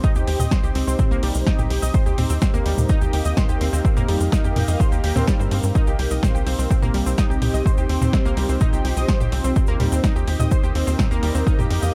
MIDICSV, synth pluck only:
0, 0, Header, 1, 2, 480
1, 0, Start_track
1, 0, Key_signature, -3, "minor"
1, 0, Tempo, 476190
1, 37, Time_signature, 4, 2, 24, 8
1, 12036, End_track
2, 0, Start_track
2, 0, Title_t, "Synth pluck"
2, 0, Program_c, 0, 84
2, 37, Note_on_c, 0, 63, 103
2, 38, Note_on_c, 0, 75, 68
2, 129, Note_off_c, 0, 63, 0
2, 130, Note_off_c, 0, 75, 0
2, 160, Note_on_c, 0, 67, 76
2, 160, Note_on_c, 0, 79, 54
2, 266, Note_off_c, 0, 67, 0
2, 266, Note_off_c, 0, 79, 0
2, 278, Note_on_c, 0, 67, 77
2, 278, Note_on_c, 0, 79, 51
2, 393, Note_off_c, 0, 67, 0
2, 393, Note_off_c, 0, 79, 0
2, 400, Note_on_c, 0, 75, 82
2, 400, Note_on_c, 0, 87, 54
2, 512, Note_off_c, 0, 75, 0
2, 512, Note_off_c, 0, 87, 0
2, 518, Note_on_c, 0, 72, 88
2, 518, Note_on_c, 0, 84, 59
2, 573, Note_off_c, 0, 72, 0
2, 573, Note_off_c, 0, 84, 0
2, 639, Note_on_c, 0, 67, 77
2, 640, Note_on_c, 0, 79, 55
2, 729, Note_off_c, 0, 67, 0
2, 729, Note_off_c, 0, 79, 0
2, 759, Note_on_c, 0, 60, 75
2, 759, Note_on_c, 0, 72, 52
2, 814, Note_off_c, 0, 60, 0
2, 814, Note_off_c, 0, 72, 0
2, 881, Note_on_c, 0, 60, 75
2, 881, Note_on_c, 0, 72, 54
2, 970, Note_off_c, 0, 60, 0
2, 970, Note_off_c, 0, 72, 0
2, 999, Note_on_c, 0, 60, 89
2, 999, Note_on_c, 0, 72, 62
2, 1090, Note_off_c, 0, 60, 0
2, 1090, Note_off_c, 0, 72, 0
2, 1119, Note_on_c, 0, 58, 102
2, 1120, Note_on_c, 0, 70, 72
2, 1209, Note_off_c, 0, 58, 0
2, 1209, Note_off_c, 0, 70, 0
2, 1238, Note_on_c, 0, 55, 79
2, 1239, Note_on_c, 0, 67, 52
2, 1330, Note_off_c, 0, 55, 0
2, 1330, Note_off_c, 0, 67, 0
2, 1478, Note_on_c, 0, 63, 100
2, 1478, Note_on_c, 0, 75, 72
2, 1570, Note_off_c, 0, 63, 0
2, 1570, Note_off_c, 0, 75, 0
2, 1599, Note_on_c, 0, 67, 77
2, 1599, Note_on_c, 0, 79, 55
2, 1705, Note_off_c, 0, 67, 0
2, 1706, Note_off_c, 0, 79, 0
2, 1717, Note_on_c, 0, 67, 76
2, 1718, Note_on_c, 0, 79, 55
2, 1833, Note_off_c, 0, 67, 0
2, 1833, Note_off_c, 0, 79, 0
2, 1838, Note_on_c, 0, 87, 53
2, 1839, Note_on_c, 0, 75, 76
2, 1951, Note_off_c, 0, 75, 0
2, 1951, Note_off_c, 0, 87, 0
2, 1957, Note_on_c, 0, 84, 59
2, 1958, Note_on_c, 0, 72, 80
2, 2012, Note_off_c, 0, 84, 0
2, 2013, Note_off_c, 0, 72, 0
2, 2078, Note_on_c, 0, 67, 78
2, 2078, Note_on_c, 0, 79, 53
2, 2168, Note_off_c, 0, 67, 0
2, 2168, Note_off_c, 0, 79, 0
2, 2197, Note_on_c, 0, 72, 54
2, 2198, Note_on_c, 0, 60, 78
2, 2253, Note_off_c, 0, 60, 0
2, 2253, Note_off_c, 0, 72, 0
2, 2319, Note_on_c, 0, 60, 79
2, 2319, Note_on_c, 0, 72, 55
2, 2409, Note_off_c, 0, 60, 0
2, 2409, Note_off_c, 0, 72, 0
2, 2437, Note_on_c, 0, 60, 84
2, 2438, Note_on_c, 0, 72, 61
2, 2529, Note_off_c, 0, 60, 0
2, 2530, Note_off_c, 0, 72, 0
2, 2559, Note_on_c, 0, 58, 104
2, 2559, Note_on_c, 0, 70, 72
2, 2649, Note_off_c, 0, 58, 0
2, 2649, Note_off_c, 0, 70, 0
2, 2677, Note_on_c, 0, 55, 77
2, 2678, Note_on_c, 0, 67, 52
2, 2769, Note_off_c, 0, 55, 0
2, 2770, Note_off_c, 0, 67, 0
2, 2917, Note_on_c, 0, 63, 107
2, 2917, Note_on_c, 0, 75, 76
2, 3009, Note_off_c, 0, 63, 0
2, 3009, Note_off_c, 0, 75, 0
2, 3039, Note_on_c, 0, 67, 76
2, 3039, Note_on_c, 0, 79, 54
2, 3145, Note_off_c, 0, 79, 0
2, 3146, Note_off_c, 0, 67, 0
2, 3157, Note_on_c, 0, 79, 54
2, 3158, Note_on_c, 0, 67, 76
2, 3273, Note_off_c, 0, 67, 0
2, 3273, Note_off_c, 0, 79, 0
2, 3278, Note_on_c, 0, 75, 77
2, 3279, Note_on_c, 0, 87, 54
2, 3391, Note_off_c, 0, 75, 0
2, 3392, Note_off_c, 0, 87, 0
2, 3397, Note_on_c, 0, 72, 81
2, 3397, Note_on_c, 0, 84, 56
2, 3453, Note_off_c, 0, 72, 0
2, 3453, Note_off_c, 0, 84, 0
2, 3518, Note_on_c, 0, 67, 78
2, 3518, Note_on_c, 0, 79, 54
2, 3609, Note_off_c, 0, 67, 0
2, 3609, Note_off_c, 0, 79, 0
2, 3637, Note_on_c, 0, 60, 77
2, 3637, Note_on_c, 0, 72, 52
2, 3692, Note_off_c, 0, 72, 0
2, 3693, Note_off_c, 0, 60, 0
2, 3758, Note_on_c, 0, 60, 76
2, 3758, Note_on_c, 0, 72, 52
2, 3848, Note_off_c, 0, 60, 0
2, 3849, Note_off_c, 0, 72, 0
2, 3877, Note_on_c, 0, 60, 80
2, 3877, Note_on_c, 0, 72, 57
2, 3969, Note_off_c, 0, 72, 0
2, 3970, Note_off_c, 0, 60, 0
2, 3998, Note_on_c, 0, 58, 103
2, 3999, Note_on_c, 0, 70, 72
2, 4089, Note_off_c, 0, 58, 0
2, 4089, Note_off_c, 0, 70, 0
2, 4117, Note_on_c, 0, 55, 77
2, 4117, Note_on_c, 0, 67, 51
2, 4209, Note_off_c, 0, 55, 0
2, 4209, Note_off_c, 0, 67, 0
2, 4357, Note_on_c, 0, 75, 72
2, 4358, Note_on_c, 0, 63, 108
2, 4449, Note_off_c, 0, 75, 0
2, 4450, Note_off_c, 0, 63, 0
2, 4479, Note_on_c, 0, 67, 77
2, 4479, Note_on_c, 0, 79, 55
2, 4586, Note_off_c, 0, 67, 0
2, 4587, Note_off_c, 0, 79, 0
2, 4598, Note_on_c, 0, 67, 78
2, 4599, Note_on_c, 0, 79, 54
2, 4713, Note_off_c, 0, 67, 0
2, 4713, Note_off_c, 0, 79, 0
2, 4718, Note_on_c, 0, 75, 74
2, 4719, Note_on_c, 0, 87, 52
2, 4831, Note_off_c, 0, 75, 0
2, 4832, Note_off_c, 0, 87, 0
2, 4838, Note_on_c, 0, 72, 86
2, 4838, Note_on_c, 0, 84, 61
2, 4893, Note_off_c, 0, 72, 0
2, 4893, Note_off_c, 0, 84, 0
2, 4959, Note_on_c, 0, 79, 52
2, 4960, Note_on_c, 0, 67, 77
2, 5049, Note_off_c, 0, 67, 0
2, 5049, Note_off_c, 0, 79, 0
2, 5077, Note_on_c, 0, 79, 72
2, 5078, Note_on_c, 0, 67, 100
2, 5193, Note_off_c, 0, 67, 0
2, 5193, Note_off_c, 0, 79, 0
2, 5199, Note_on_c, 0, 60, 102
2, 5199, Note_on_c, 0, 72, 72
2, 5312, Note_off_c, 0, 60, 0
2, 5312, Note_off_c, 0, 72, 0
2, 5318, Note_on_c, 0, 55, 103
2, 5318, Note_on_c, 0, 67, 68
2, 5410, Note_off_c, 0, 55, 0
2, 5410, Note_off_c, 0, 67, 0
2, 5439, Note_on_c, 0, 60, 73
2, 5439, Note_on_c, 0, 72, 55
2, 5493, Note_off_c, 0, 60, 0
2, 5493, Note_off_c, 0, 72, 0
2, 5557, Note_on_c, 0, 60, 76
2, 5557, Note_on_c, 0, 72, 54
2, 5649, Note_off_c, 0, 60, 0
2, 5649, Note_off_c, 0, 72, 0
2, 5797, Note_on_c, 0, 63, 102
2, 5797, Note_on_c, 0, 75, 70
2, 5889, Note_off_c, 0, 63, 0
2, 5889, Note_off_c, 0, 75, 0
2, 5920, Note_on_c, 0, 67, 78
2, 5920, Note_on_c, 0, 79, 55
2, 6026, Note_off_c, 0, 67, 0
2, 6026, Note_off_c, 0, 79, 0
2, 6038, Note_on_c, 0, 67, 75
2, 6038, Note_on_c, 0, 79, 52
2, 6153, Note_off_c, 0, 67, 0
2, 6153, Note_off_c, 0, 79, 0
2, 6159, Note_on_c, 0, 87, 56
2, 6160, Note_on_c, 0, 75, 76
2, 6272, Note_off_c, 0, 75, 0
2, 6272, Note_off_c, 0, 87, 0
2, 6277, Note_on_c, 0, 72, 82
2, 6277, Note_on_c, 0, 84, 62
2, 6332, Note_off_c, 0, 72, 0
2, 6333, Note_off_c, 0, 84, 0
2, 6398, Note_on_c, 0, 67, 77
2, 6398, Note_on_c, 0, 79, 53
2, 6488, Note_off_c, 0, 79, 0
2, 6489, Note_off_c, 0, 67, 0
2, 6517, Note_on_c, 0, 60, 75
2, 6518, Note_on_c, 0, 72, 54
2, 6573, Note_off_c, 0, 60, 0
2, 6573, Note_off_c, 0, 72, 0
2, 6639, Note_on_c, 0, 72, 54
2, 6640, Note_on_c, 0, 60, 74
2, 6729, Note_off_c, 0, 60, 0
2, 6729, Note_off_c, 0, 72, 0
2, 6758, Note_on_c, 0, 60, 87
2, 6758, Note_on_c, 0, 72, 63
2, 6850, Note_off_c, 0, 60, 0
2, 6850, Note_off_c, 0, 72, 0
2, 6879, Note_on_c, 0, 58, 103
2, 6879, Note_on_c, 0, 70, 71
2, 6969, Note_off_c, 0, 58, 0
2, 6969, Note_off_c, 0, 70, 0
2, 6998, Note_on_c, 0, 55, 77
2, 6998, Note_on_c, 0, 67, 54
2, 7090, Note_off_c, 0, 55, 0
2, 7090, Note_off_c, 0, 67, 0
2, 7119, Note_on_c, 0, 60, 80
2, 7119, Note_on_c, 0, 72, 53
2, 7209, Note_off_c, 0, 60, 0
2, 7209, Note_off_c, 0, 72, 0
2, 7237, Note_on_c, 0, 63, 101
2, 7237, Note_on_c, 0, 75, 70
2, 7329, Note_off_c, 0, 63, 0
2, 7329, Note_off_c, 0, 75, 0
2, 7358, Note_on_c, 0, 67, 76
2, 7359, Note_on_c, 0, 79, 53
2, 7466, Note_off_c, 0, 67, 0
2, 7466, Note_off_c, 0, 79, 0
2, 7478, Note_on_c, 0, 67, 76
2, 7479, Note_on_c, 0, 79, 54
2, 7593, Note_off_c, 0, 67, 0
2, 7593, Note_off_c, 0, 79, 0
2, 7600, Note_on_c, 0, 75, 75
2, 7600, Note_on_c, 0, 87, 52
2, 7712, Note_off_c, 0, 75, 0
2, 7712, Note_off_c, 0, 87, 0
2, 7720, Note_on_c, 0, 72, 82
2, 7720, Note_on_c, 0, 84, 57
2, 7774, Note_off_c, 0, 72, 0
2, 7774, Note_off_c, 0, 84, 0
2, 7841, Note_on_c, 0, 67, 76
2, 7841, Note_on_c, 0, 79, 55
2, 7930, Note_off_c, 0, 67, 0
2, 7930, Note_off_c, 0, 79, 0
2, 7959, Note_on_c, 0, 60, 77
2, 7959, Note_on_c, 0, 72, 53
2, 8013, Note_off_c, 0, 72, 0
2, 8014, Note_off_c, 0, 60, 0
2, 8080, Note_on_c, 0, 60, 78
2, 8080, Note_on_c, 0, 72, 56
2, 8169, Note_off_c, 0, 60, 0
2, 8169, Note_off_c, 0, 72, 0
2, 8199, Note_on_c, 0, 60, 88
2, 8199, Note_on_c, 0, 72, 61
2, 8290, Note_off_c, 0, 60, 0
2, 8290, Note_off_c, 0, 72, 0
2, 8320, Note_on_c, 0, 58, 104
2, 8320, Note_on_c, 0, 70, 71
2, 8409, Note_off_c, 0, 70, 0
2, 8410, Note_off_c, 0, 58, 0
2, 8438, Note_on_c, 0, 55, 75
2, 8438, Note_on_c, 0, 67, 53
2, 8530, Note_off_c, 0, 55, 0
2, 8530, Note_off_c, 0, 67, 0
2, 8560, Note_on_c, 0, 60, 75
2, 8560, Note_on_c, 0, 72, 54
2, 8649, Note_off_c, 0, 60, 0
2, 8649, Note_off_c, 0, 72, 0
2, 8677, Note_on_c, 0, 63, 107
2, 8678, Note_on_c, 0, 75, 77
2, 8770, Note_off_c, 0, 63, 0
2, 8770, Note_off_c, 0, 75, 0
2, 8799, Note_on_c, 0, 67, 76
2, 8799, Note_on_c, 0, 79, 55
2, 8906, Note_off_c, 0, 67, 0
2, 8906, Note_off_c, 0, 79, 0
2, 8918, Note_on_c, 0, 67, 77
2, 8918, Note_on_c, 0, 79, 54
2, 9033, Note_off_c, 0, 67, 0
2, 9033, Note_off_c, 0, 79, 0
2, 9039, Note_on_c, 0, 75, 78
2, 9039, Note_on_c, 0, 87, 54
2, 9152, Note_off_c, 0, 75, 0
2, 9152, Note_off_c, 0, 87, 0
2, 9158, Note_on_c, 0, 72, 82
2, 9158, Note_on_c, 0, 84, 59
2, 9213, Note_off_c, 0, 72, 0
2, 9213, Note_off_c, 0, 84, 0
2, 9277, Note_on_c, 0, 67, 77
2, 9278, Note_on_c, 0, 79, 55
2, 9368, Note_off_c, 0, 67, 0
2, 9368, Note_off_c, 0, 79, 0
2, 9397, Note_on_c, 0, 60, 78
2, 9397, Note_on_c, 0, 72, 53
2, 9452, Note_off_c, 0, 60, 0
2, 9452, Note_off_c, 0, 72, 0
2, 9519, Note_on_c, 0, 60, 78
2, 9519, Note_on_c, 0, 72, 54
2, 9609, Note_off_c, 0, 60, 0
2, 9609, Note_off_c, 0, 72, 0
2, 9637, Note_on_c, 0, 60, 80
2, 9637, Note_on_c, 0, 72, 59
2, 9729, Note_off_c, 0, 60, 0
2, 9729, Note_off_c, 0, 72, 0
2, 9758, Note_on_c, 0, 58, 107
2, 9758, Note_on_c, 0, 70, 71
2, 9848, Note_off_c, 0, 58, 0
2, 9849, Note_off_c, 0, 70, 0
2, 9878, Note_on_c, 0, 55, 77
2, 9878, Note_on_c, 0, 67, 54
2, 9970, Note_off_c, 0, 55, 0
2, 9970, Note_off_c, 0, 67, 0
2, 9999, Note_on_c, 0, 60, 77
2, 9999, Note_on_c, 0, 72, 56
2, 10089, Note_off_c, 0, 60, 0
2, 10089, Note_off_c, 0, 72, 0
2, 10119, Note_on_c, 0, 63, 102
2, 10119, Note_on_c, 0, 75, 71
2, 10210, Note_off_c, 0, 63, 0
2, 10210, Note_off_c, 0, 75, 0
2, 10240, Note_on_c, 0, 67, 76
2, 10240, Note_on_c, 0, 79, 57
2, 10346, Note_off_c, 0, 67, 0
2, 10346, Note_off_c, 0, 79, 0
2, 10358, Note_on_c, 0, 67, 79
2, 10359, Note_on_c, 0, 79, 52
2, 10473, Note_off_c, 0, 67, 0
2, 10473, Note_off_c, 0, 79, 0
2, 10479, Note_on_c, 0, 75, 77
2, 10479, Note_on_c, 0, 87, 52
2, 10592, Note_off_c, 0, 75, 0
2, 10592, Note_off_c, 0, 87, 0
2, 10598, Note_on_c, 0, 84, 62
2, 10599, Note_on_c, 0, 72, 90
2, 10653, Note_off_c, 0, 72, 0
2, 10653, Note_off_c, 0, 84, 0
2, 10720, Note_on_c, 0, 79, 55
2, 10721, Note_on_c, 0, 67, 77
2, 10810, Note_off_c, 0, 67, 0
2, 10810, Note_off_c, 0, 79, 0
2, 10837, Note_on_c, 0, 72, 56
2, 10838, Note_on_c, 0, 60, 76
2, 10893, Note_off_c, 0, 60, 0
2, 10893, Note_off_c, 0, 72, 0
2, 10958, Note_on_c, 0, 60, 77
2, 10958, Note_on_c, 0, 72, 54
2, 11048, Note_off_c, 0, 60, 0
2, 11048, Note_off_c, 0, 72, 0
2, 11077, Note_on_c, 0, 60, 83
2, 11077, Note_on_c, 0, 72, 55
2, 11169, Note_off_c, 0, 60, 0
2, 11169, Note_off_c, 0, 72, 0
2, 11199, Note_on_c, 0, 58, 102
2, 11199, Note_on_c, 0, 70, 73
2, 11289, Note_off_c, 0, 58, 0
2, 11289, Note_off_c, 0, 70, 0
2, 11317, Note_on_c, 0, 55, 77
2, 11318, Note_on_c, 0, 67, 54
2, 11409, Note_off_c, 0, 55, 0
2, 11410, Note_off_c, 0, 67, 0
2, 11439, Note_on_c, 0, 60, 75
2, 11439, Note_on_c, 0, 72, 54
2, 11529, Note_off_c, 0, 60, 0
2, 11529, Note_off_c, 0, 72, 0
2, 11558, Note_on_c, 0, 63, 103
2, 11558, Note_on_c, 0, 75, 69
2, 11650, Note_off_c, 0, 63, 0
2, 11650, Note_off_c, 0, 75, 0
2, 11679, Note_on_c, 0, 67, 78
2, 11680, Note_on_c, 0, 79, 54
2, 11786, Note_off_c, 0, 67, 0
2, 11786, Note_off_c, 0, 79, 0
2, 11798, Note_on_c, 0, 67, 79
2, 11798, Note_on_c, 0, 79, 55
2, 11913, Note_off_c, 0, 67, 0
2, 11913, Note_off_c, 0, 79, 0
2, 11918, Note_on_c, 0, 75, 76
2, 11918, Note_on_c, 0, 87, 56
2, 12031, Note_off_c, 0, 75, 0
2, 12031, Note_off_c, 0, 87, 0
2, 12036, End_track
0, 0, End_of_file